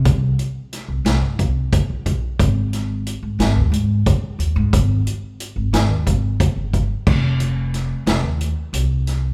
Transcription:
<<
  \new Staff \with { instrumentName = "Upright bass" } { \clef bass \time 7/8 \key aes \lydian \tempo 4 = 90 c,8 r8. c,16 c,16 g,16 c,8 r16 bes,,16 bes,,16 r16 | aes,,4~ aes,,16 aes,16 aes,,16 ees,16 aes,8 r8 ees,16 aes,16 | aes,,8 r8. aes,,16 aes,,16 ees,16 aes,,8 r16 g,,16 g,,16 r16 | f,,4. f,,16 ees,8 r16 c,4 | }
  \new DrumStaff \with { instrumentName = "Drums" } \drummode { \time 7/8 <hh bd>8 hh8 <hh sn>8 <hh sn>8 <hh bd>8 <hh bd>8 <hh bd>8 | <hh bd>8 <hh sn>8 hh8 <hh sn>8 hh8 <hh bd>8 hh8 | <hh bd>8 hh8 hh8 <hh sn>8 <hh bd>8 <hh bd>8 <hh bd>8 | <cymc bd>8 hh8 <hh sn>8 <hh sn>8 hh8 hh8 <hh sn>8 | }
>>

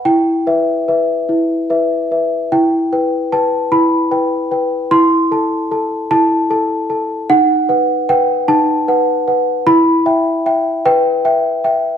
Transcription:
\new Staff \with { instrumentName = "Celesta" } { \time 6/8 \key e \minor \tempo 4. = 50 << { g''4. r4. | g''4 a''8 b''4. | c'''4. a''4. | fis''4 g''8 a''4. |
b''4. g''4. | } \\ { e'8 <b' e''>8 <b' e''>8 e'8 <b' e''>8 <b' e''>8 | e'8 <b' g''>8 <b' g''>8 e'8 <b' g''>8 <b' g''>8 | e'8 <a' a''>8 <a' a''>8 e'8 <a' a''>8 <a' a''>8 | dis'8 <b' fis''>8 <b' fis''>8 dis'8 <b' fis''>8 <b' fis''>8 |
e'8 <e'' g''>8 <e'' g''>8 b'8 <e'' g''>8 <e'' g''>8 | } >> }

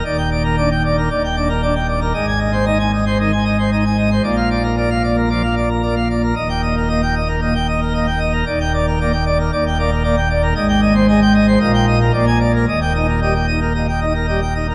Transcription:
<<
  \new Staff \with { instrumentName = "Pipe organ" } { \time 4/4 \key ees \major \tempo 4 = 114 d''16 g''16 d''16 bes'16 d''16 g''16 d''16 bes'16 d''16 g''16 d''16 bes'16 d''16 g''16 d''16 bes'16 | ees''16 aes''16 ees''16 c''16 ees''16 aes''16 ees''16 c''16 ees''16 aes''16 ees''16 c''16 ees''16 aes''16 ees''16 c''16 | d''16 f''16 d''16 bes'16 d''16 f''16 d''16 bes'16 d''16 f''16 d''16 bes'16 d''16 f''16 d''16 bes'16 | ees''16 g''16 ees''16 bes'16 ees''16 g''16 ees''16 bes'16 ees''16 g''16 ees''16 bes'16 ees''16 g''16 ees''16 bes'16 |
d''16 g''16 d''16 bes'16 d''16 g''16 d''16 bes'16 d''16 g''16 d''16 bes'16 d''16 g''16 d''16 bes'16 | ees''16 g''16 ees''16 c''16 ees''16 g''16 ees''16 c''16 ees''16 g''16 ees''16 bes'16 d''16 aes''16 d''16 bes'16 | ees''16 g''16 ees''16 bes'16 ees''16 g''16 ees''16 bes'16 ees''16 g''16 ees''16 bes'16 ees''16 g''16 ees''16 bes'16 | }
  \new Staff \with { instrumentName = "Pipe organ" } { \clef bass \time 4/4 \key ees \major << { ees,4 d'16 r8. ees,8 d'16 r16 d'16 r8. | aes,4 ees'16 r8. ees16 r8. ees'16 r8. | bes,4 bes16 r8. f16 r8. bes16 r8. | ees,4 bes16 r8. bes,16 r8. bes16 r8. |
ees,4 bes16 r8. ees,8 bes16 r16 bes16 r8. | aes,4 aes16 r8. bes,4 bes,4 | ees,8 ees'16 r16 g16 r16 ees'16 r16 bes,16 r16 ees'16 r16 g16 r16 ees'16 r16 | } \\ { ees,,2 ees,,2 | aes,,1 | bes,,1 | ees,,1 |
ees,,2 ees,,2 | aes,,2 bes,,4 bes,,4 | ees,,1 | } >> }
>>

